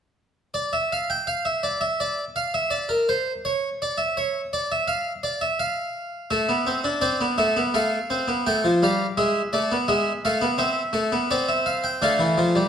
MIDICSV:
0, 0, Header, 1, 2, 480
1, 0, Start_track
1, 0, Tempo, 722892
1, 370, Time_signature, 4, 2, 24, 8
1, 3727, Tempo, 713436
1, 8484, End_track
2, 0, Start_track
2, 0, Title_t, "Harpsichord"
2, 0, Program_c, 0, 6
2, 360, Note_on_c, 0, 74, 68
2, 482, Note_off_c, 0, 74, 0
2, 484, Note_on_c, 0, 76, 61
2, 604, Note_off_c, 0, 76, 0
2, 614, Note_on_c, 0, 77, 67
2, 729, Note_off_c, 0, 77, 0
2, 729, Note_on_c, 0, 79, 65
2, 845, Note_on_c, 0, 77, 69
2, 846, Note_off_c, 0, 79, 0
2, 964, Note_off_c, 0, 77, 0
2, 965, Note_on_c, 0, 76, 57
2, 1084, Note_off_c, 0, 76, 0
2, 1084, Note_on_c, 0, 74, 66
2, 1201, Note_on_c, 0, 76, 72
2, 1203, Note_off_c, 0, 74, 0
2, 1322, Note_off_c, 0, 76, 0
2, 1330, Note_on_c, 0, 74, 67
2, 1479, Note_off_c, 0, 74, 0
2, 1566, Note_on_c, 0, 77, 64
2, 1685, Note_off_c, 0, 77, 0
2, 1688, Note_on_c, 0, 76, 63
2, 1796, Note_on_c, 0, 74, 69
2, 1806, Note_off_c, 0, 76, 0
2, 1919, Note_on_c, 0, 70, 59
2, 1920, Note_off_c, 0, 74, 0
2, 2042, Note_off_c, 0, 70, 0
2, 2051, Note_on_c, 0, 72, 64
2, 2201, Note_off_c, 0, 72, 0
2, 2291, Note_on_c, 0, 73, 72
2, 2441, Note_off_c, 0, 73, 0
2, 2537, Note_on_c, 0, 74, 67
2, 2640, Note_on_c, 0, 76, 60
2, 2651, Note_off_c, 0, 74, 0
2, 2762, Note_off_c, 0, 76, 0
2, 2771, Note_on_c, 0, 73, 66
2, 2919, Note_off_c, 0, 73, 0
2, 3009, Note_on_c, 0, 74, 70
2, 3126, Note_off_c, 0, 74, 0
2, 3132, Note_on_c, 0, 76, 64
2, 3238, Note_on_c, 0, 77, 72
2, 3247, Note_off_c, 0, 76, 0
2, 3390, Note_off_c, 0, 77, 0
2, 3475, Note_on_c, 0, 74, 65
2, 3595, Note_on_c, 0, 76, 64
2, 3599, Note_off_c, 0, 74, 0
2, 3715, Note_on_c, 0, 77, 71
2, 3718, Note_off_c, 0, 76, 0
2, 4186, Note_off_c, 0, 77, 0
2, 4193, Note_on_c, 0, 76, 64
2, 4194, Note_on_c, 0, 57, 68
2, 4316, Note_off_c, 0, 57, 0
2, 4316, Note_on_c, 0, 59, 67
2, 4436, Note_on_c, 0, 60, 65
2, 4437, Note_off_c, 0, 59, 0
2, 4554, Note_on_c, 0, 62, 63
2, 4556, Note_off_c, 0, 60, 0
2, 4663, Note_off_c, 0, 76, 0
2, 4670, Note_on_c, 0, 60, 76
2, 4670, Note_on_c, 0, 74, 63
2, 4675, Note_off_c, 0, 62, 0
2, 4793, Note_off_c, 0, 60, 0
2, 4799, Note_on_c, 0, 59, 67
2, 4823, Note_off_c, 0, 74, 0
2, 4915, Note_on_c, 0, 57, 70
2, 4917, Note_on_c, 0, 76, 62
2, 4918, Note_off_c, 0, 59, 0
2, 5036, Note_off_c, 0, 57, 0
2, 5040, Note_on_c, 0, 59, 67
2, 5068, Note_off_c, 0, 76, 0
2, 5159, Note_off_c, 0, 59, 0
2, 5159, Note_on_c, 0, 57, 71
2, 5162, Note_on_c, 0, 77, 64
2, 5311, Note_off_c, 0, 57, 0
2, 5402, Note_on_c, 0, 60, 72
2, 5519, Note_on_c, 0, 59, 62
2, 5521, Note_off_c, 0, 60, 0
2, 5632, Note_off_c, 0, 77, 0
2, 5640, Note_off_c, 0, 59, 0
2, 5646, Note_on_c, 0, 79, 62
2, 5648, Note_on_c, 0, 57, 69
2, 5764, Note_off_c, 0, 57, 0
2, 5765, Note_on_c, 0, 53, 59
2, 5795, Note_off_c, 0, 79, 0
2, 5883, Note_off_c, 0, 53, 0
2, 5889, Note_on_c, 0, 55, 60
2, 5892, Note_on_c, 0, 77, 53
2, 6038, Note_off_c, 0, 55, 0
2, 6040, Note_off_c, 0, 77, 0
2, 6123, Note_on_c, 0, 56, 78
2, 6124, Note_on_c, 0, 76, 67
2, 6274, Note_off_c, 0, 56, 0
2, 6274, Note_off_c, 0, 76, 0
2, 6362, Note_on_c, 0, 74, 64
2, 6366, Note_on_c, 0, 57, 63
2, 6484, Note_off_c, 0, 57, 0
2, 6487, Note_on_c, 0, 59, 61
2, 6513, Note_off_c, 0, 74, 0
2, 6599, Note_on_c, 0, 76, 62
2, 6600, Note_on_c, 0, 56, 72
2, 6604, Note_off_c, 0, 59, 0
2, 6751, Note_off_c, 0, 56, 0
2, 6751, Note_off_c, 0, 76, 0
2, 6846, Note_on_c, 0, 77, 66
2, 6847, Note_on_c, 0, 57, 70
2, 6957, Note_on_c, 0, 59, 78
2, 6964, Note_off_c, 0, 57, 0
2, 6995, Note_off_c, 0, 77, 0
2, 7070, Note_on_c, 0, 60, 74
2, 7074, Note_on_c, 0, 76, 68
2, 7079, Note_off_c, 0, 59, 0
2, 7224, Note_off_c, 0, 60, 0
2, 7305, Note_on_c, 0, 57, 76
2, 7432, Note_off_c, 0, 57, 0
2, 7433, Note_on_c, 0, 59, 68
2, 7547, Note_off_c, 0, 76, 0
2, 7557, Note_off_c, 0, 59, 0
2, 7557, Note_on_c, 0, 74, 63
2, 7559, Note_on_c, 0, 60, 77
2, 7678, Note_on_c, 0, 76, 60
2, 7679, Note_off_c, 0, 74, 0
2, 7796, Note_on_c, 0, 77, 62
2, 7799, Note_off_c, 0, 76, 0
2, 7915, Note_on_c, 0, 79, 58
2, 7918, Note_off_c, 0, 77, 0
2, 8029, Note_off_c, 0, 60, 0
2, 8037, Note_off_c, 0, 79, 0
2, 8037, Note_on_c, 0, 50, 75
2, 8039, Note_on_c, 0, 57, 63
2, 8040, Note_on_c, 0, 77, 65
2, 8153, Note_on_c, 0, 52, 78
2, 8158, Note_off_c, 0, 50, 0
2, 8277, Note_off_c, 0, 52, 0
2, 8278, Note_on_c, 0, 53, 76
2, 8397, Note_on_c, 0, 55, 66
2, 8399, Note_off_c, 0, 53, 0
2, 8484, Note_off_c, 0, 55, 0
2, 8484, Note_off_c, 0, 57, 0
2, 8484, Note_off_c, 0, 77, 0
2, 8484, End_track
0, 0, End_of_file